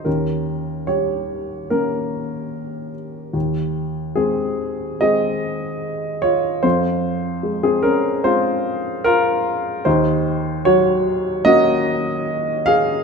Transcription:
<<
  \new Staff \with { instrumentName = "Upright piano" } { \time 4/4 \key ees \dorian \tempo 4 = 74 <des' bes'>4 <g' des''>4 <des' bes'>4. r8 | r4 <c' aes'>4 <aes' ees''>4. <f' des''>8 | <f' c''>4~ <f' c''>16 <c' aes'>16 <des' bes'>8 <f' c''>4 <f' bes'>4 | <ees' c''>4 <ges' des''>4 <ges' ees''>4. <aes' f''>8 | }
  \new Staff \with { instrumentName = "Upright piano" } { \clef bass \time 4/4 \key ees \dorian ees,4 g4 bes2 | ees,4 aes4 <aes c'>2 | f,4 aes4 <aes c'>2 | ees,4 ges4 <bes des'>2 | }
>>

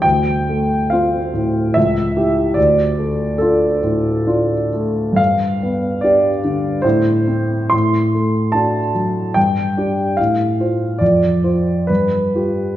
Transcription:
\new Staff \with { instrumentName = "Grand piano" } { \time 3/4 \key d \dorian \tempo 4 = 72 << { g''4 f''4 e''4 | d''4 a'2 | f''4 d''4 c''4 | c'''4 a''4 g''4 |
f''4 d''4 b'4 | } \\ { d,8 a8 <c' f'>8 a,8 cis,8 <e' g'>8 | d,8 a8 <d' f'>8 a,8 <d' f'>8 a8 | g,8 b8 <d' g'>8 d8 a,8 <c' e'>8 | a,8 a8 <d' fis'>8 fis8 g,8 <d' g'>8 |
a,8 <f' c''>8 f,8 <f' c''>8 g,8 <f' g'>8 | } >> }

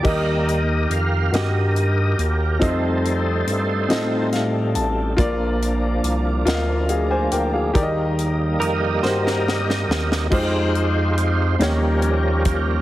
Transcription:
<<
  \new Staff \with { instrumentName = "Clean electric guitar" } { \time 6/8 \key ees \major \tempo 4. = 47 r2. | r2. | r2. | r4 bes'8 c''16 bes'4~ bes'16 |
r2. | }
  \new Staff \with { instrumentName = "Grand piano" } { \time 6/8 \key ees \major << { r2. | r2 f''8 a''8 | r2 <aes' f''>16 <c'' aes''>16 <bes' g''>16 <aes' f''>16~ | <aes' f''>16 r2 r8. |
r2. | } \\ { <g' bes' ees''>4~ <g' bes' ees''>16 r16 <ges' g' bes' ees''>4~ <ges' g' bes' ees''>16 r16 | <c' ees' f' a' ees''>4~ <c' ees' f' a' ees''>16 r16 <c' ees' f' a' ees''>4~ <c' ees' f' a' ees''>16 r16 | <f' bes' d''>4~ <f' bes' d''>16 r16 <f' bes' ees'' f''>4~ <f' bes' ees'' f''>16 r16 | <g' bes' d'' ees''>4~ <g' bes' d'' ees''>16 r16 <ges' g' bes' c''>4~ <ges' g' bes' c''>16 r16 |
<aes ees' f' g' c''>4~ <aes ees' f' g' c''>16 r16 <bes des' ees' g' des''>4~ <bes des' ees' g' des''>16 r16 | } >> }
  \new Staff \with { instrumentName = "Grand piano" } { \clef bass \time 6/8 \key ees \major ees4. r4. | r2. | bes,4. r4. | ees4. r4. |
r4. ees4. | }
  \new Staff \with { instrumentName = "Tonewheel organ" } { \time 6/8 \key ees \major << { ees''4 f''8 ees''4 bes'8 | c''2 r4 | r2. | r4 ees''2 |
c''4. bes'4. | } \\ { <g' bes'>4. <g' bes'>4. | a'2 r4 | r2. | r4 <g' bes'>2 |
<ees' f'>4. <des' g'>4. | } >> }
  \new Staff \with { instrumentName = "Tonewheel organ" } { \time 6/8 \key ees \major <g bes ees'>8 r2 r8 | <g a ees'>2. | <f bes d'>2. | <g bes ees'>2~ <g bes ees'>8 <g bes ees'>8 |
<aes g'>4. <f g>4. | }
  \new Staff \with { instrumentName = "Analog synth bass" } { \clef bass \time 6/8 \key ees \major ees,4 f,8 g,4 ees,8 | f,4 g,8 a,4 a,,8 | bes,,4 c,8 d,4 d,8 | ees,4 f,8 g,4 ees,8 |
f,4. ees,4. | }
  \new DrumStaff \with { instrumentName = "Drums" } \drummode { \time 6/8 <cymc bd>8 hh8 hh8 <hh sn>8 hh8 hh8 | <hh bd>8 hh8 hh8 <hh sn>8 <hh sn>8 hh8 | <hh bd>8 hh8 hh8 <hh sn>8 hh8 hh8 | <hh bd>8 hh8 hh8 sn16 sn16 sn16 sn16 sn16 sn16 |
<cymc bd>8 hh8 hh8 <hh sn>8 hh8 <hh bd>8 | }
>>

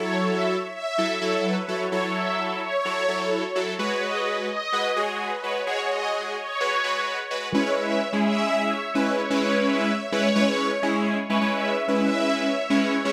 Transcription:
<<
  \new Staff \with { instrumentName = "Supersaw synth" } { \time 4/4 \key cis \minor \tempo 4 = 128 cis''8 e''8 r8 e''8. r16 cis''16 r16 b'16 r16 cis''16 r16 | cis''8 e''8 r8 cis''4 r4. | cis''8 dis''8 r8 dis''8. r16 cis''16 r16 b'16 r16 cis''16 r16 | cis''8 dis''8 r8 cis''4 r4. |
cis''8 e''8 r8 e''8. r16 cis''16 r16 b'16 r16 cis''16 r16 | cis''8 e''8 r8 cis''4 r4. | cis''8 e''8 r8 e''8. r16 cis''16 r16 b'16 r16 cis''16 r16 | }
  \new Staff \with { instrumentName = "Analog polysynth" } { \time 4/4 \key cis \minor <fis e' a'>4 r4 <fis e' a'>16 r16 <fis e' a'>8. r16 <fis e' a'>16 r16 | <fis e' a'>4. r8 <fis e' a'>16 r16 <fis e' a'>8. r16 <fis e' a'>16 r16 | <gis fis' b'>4. r8 <gis fis' b'>16 r16 <gis fis' gis'>8. r16 <gis fis' b'>16 r16 | <gis fis' gis'>4. r8 <gis fis' b'>16 r16 <gis fis' b'>8. r16 <gis fis' b'>16 r16 |
<gis cis' e' b'>16 <gis cis' e' b'>8. r16 <gis cis' e' gis'>4~ <gis cis' e' gis'>16 r8 <gis cis' e' b'>8 r16 <gis cis' e' b'>16~ | <gis cis' e' b'>4 r8 <gis cis' e' b'>16 r16 <gis cis' e' b'>8. r16 <gis cis' e' gis'>8. r16 | <gis cis' e' b'>16 <gis cis' e' b'>8. r16 <gis cis' e' b'>4~ <gis cis' e' b'>16 r8 <gis cis' e' cis''>8 r16 <gis cis' e' cis''>16 | }
>>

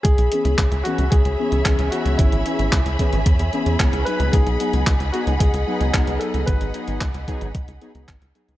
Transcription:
<<
  \new Staff \with { instrumentName = "String section" } { \time 4/4 \key cis \minor \tempo 4 = 112 << { <gis' b''>1~ | <gis' b''>1~ | <gis' b''>1~ | <gis' b''>1 | } \\ { <cis'' e''>1~ | <cis'' e''>1 | <dis'' fis''>1~ | <dis'' fis''>1 | } >> }
  \new Staff \with { instrumentName = "Grand piano" } { \time 4/4 \key cis \minor gis'4. fis'8 gis'4. fis'8 | e'2 r4. b'8 | gis'4. fis'8 gis'4. a'8 | b'2 r2 | }
  \new Staff \with { instrumentName = "Analog polysynth" } { \time 4/4 \key cis \minor r8 <e b cis' gis'>8 r8 <e b cis' gis'>16 r8. <e b cis' gis'>8 <e b cis' gis'>8 <e b cis' gis'>8~ | <e b cis' gis'>8 <e b cis' gis'>8 r8 <e b cis' gis'>16 r8. <e b cis' gis'>8 <e b cis' gis'>8 <fis b dis' gis'>8~ | <fis b dis' gis'>8 <fis b dis' gis'>8 r8 <fis b dis' gis'>16 r8. <fis b dis' gis'>8 <fis b dis' gis'>8 <fis b dis' gis'>8~ | <fis b dis' gis'>8 <fis b dis' gis'>8 r8 <fis b dis' gis'>16 r8. <fis b dis' gis'>16 <fis b dis' gis'>16 r8 <fis b dis' gis'>8 | }
  \new Staff \with { instrumentName = "Analog synth bass" } { \clef bass \time 4/4 \key cis \minor cis,16 b,,16 r16 cis,16 cis,16 cis,16 r16 cis,16 cis,16 cis,16 r16 cis,16 cis,16 cis,16 r16 cis,16 | gis,,16 gis,,16 r16 gis,,16 cis,16 cis,16 r16 gis,,16 e,16 e,16 r16 e,16 cis,16 cis,16 r16 cis,16 | cis,16 b,,16 r16 cis,16 cis,16 cis,16 r16 cis,16 cis,16 cis,16 r16 cis,16 cis,16 cis,16 r16 cis,16 | gis,,16 gis,,16 r16 gis,,16 cis,16 cis,16 r16 gis,,16 b,,16 cis,16 r16 cis,16 gis,,16 cis,16 r16 cis,16 | }
  \new DrumStaff \with { instrumentName = "Drums" } \drummode { \time 4/4 <hh bd>16 hh16 hh16 hh16 <hc hh bd>16 hh16 hh16 hh16 <hh bd>16 hh8 hh16 <hc hh bd>16 hh16 hh16 hh16 | <hh bd>16 hh16 hh16 hh16 <hc hh bd>16 hh16 <hh bd>16 hh16 <hh bd>16 hh16 hh16 hh16 <hc hh bd>16 hh16 hh16 hh16 | <hh bd>16 hh16 hh16 hh16 <hc hh bd>16 hh16 hh16 hh16 <hh bd>16 hh8 hh16 <hc hh bd>16 hh16 hh16 hh16 | <hh bd>16 hh16 hh16 hh16 <hc hh bd>16 hh16 <hh bd>16 hh16 <hh bd>16 hh16 hh16 hh16 <hc hh bd>16 hh16 hh16 hh16 | }
>>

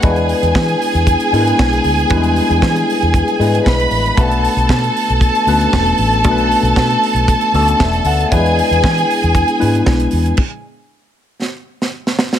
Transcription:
<<
  \new Staff \with { instrumentName = "Violin section" } { \time 4/4 \key e \mixolydian \tempo 4 = 116 <gis' gis''>1~ | <gis' gis''>2. <b' b''>4 | <a' a''>1~ | <a' a''>1 |
<gis' gis''>1 | r1 | }
  \new Staff \with { instrumentName = "Tine electric piano" } { \time 4/4 \key e \mixolydian << { r1 | r1 | r1 | r2 r8 d''8 e''8 fis''8 |
r1 | r1 | } \\ { <gis b d' e' b'>4. r4 <gis b d' e' ais' b'>4 r8 | <g gis b d' e' b'>4. r4 <gis b d' e' b'>4 r8 | <a b cis' d' fis' b'>4. r4 <a b cis' d' fis' b'>4 r8 | <a b d' fis' a' b'>4. r4 <a b cis' d' fis' a'>4 r8 |
<fis gis b d' e' b'>4. r4 <gis b d' e' b'>4 r8 | r1 | } >> }
  \new Staff \with { instrumentName = "Fingered electric bass" } { \clef bass \time 4/4 \key e \mixolydian e,8. e,16 e8 r16 e,8 r16 gis,8 b,,8 d,8 | e,8. e,16 e8 r16 e,8 r16 gis,8 b,,8 a,,8 | b,,8. b,,16 b,8 r16 b,,8 r16 d,8 e,,8 a,,8 | b,,8. b,,16 b,8 r16 b,,8 r16 d,8 e,,8 d,8 |
e,8. e,16 e8 r16 e,8 r16 gis,8 b,,8 e,8 | r1 | }
  \new DrumStaff \with { instrumentName = "Drums" } \drummode { \time 4/4 <hh bd>16 hh16 hho16 hh16 <bd sn>16 hh16 hho16 hh16 <hh bd>16 hh16 hho16 hh16 <bd sn>16 hh16 hho16 hh16 | <hh bd>16 hh16 hho16 hh16 <bd sn>16 hh16 hho16 hh16 <hh bd>16 hh16 hho16 hh16 <bd sn>16 hh16 hho16 hh16 | <hh bd>16 hh16 hho16 hh16 <bd sn>16 hh16 hho16 hh16 <hh bd>16 hh16 hho16 hh16 <bd sn>16 hh16 hho16 hh16 | <hh bd>16 hh16 hho16 hh16 <bd sn>16 hh16 hho16 hh16 <hh bd>16 hh16 hho16 hh16 <bd sn>16 hh16 hho16 hh16 |
<hh bd>16 hh16 hho16 hh16 <bd sn>16 hh16 hho16 hh16 <hh bd>16 hh16 hho16 hh16 <bd sn>16 hh16 hho16 hh16 | <cymc bd>4 r4 sn8. sn16 r16 sn16 sn16 sn16 | }
>>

